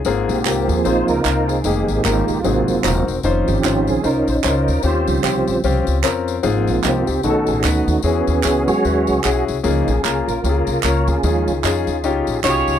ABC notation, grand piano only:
X:1
M:4/4
L:1/8
Q:"Swing" 1/4=150
K:Ab
V:1 name="Grand piano"
[B,CFA] z [B,CFG] z [B,CFA] z [B,CFB] z | [B,EGA] z [B,EGB] z [CE_GA] z [CEGB] z | [DEFc] z [DEFc] z [DEFc] z [DE_F=Fc] z | [CDFG] z [CDFG] z [CDFG] z [CDFB] z |
[CEFA] z [_C=CEFG] z [=B,^D^FA=A] z [B,DF=B] z | [^C=E^F^G] z [CEFG] z [CEF=B] z [CEFG] z | [B,DFA] z [B,DFB] z [B,DFGA] z [B,DFB] z | [DEFA] z [DEFA] z [DEFG] z [DEF_G=G] z |]
V:2 name="Grand piano" clef=bass
A,,3 z4 z | z4 A,,3 z | z8 | E,3 z4 z |
A,,3 z =B,,3 z | =E,3 z4 z | D,3 z4 z | E,3 z4 z |]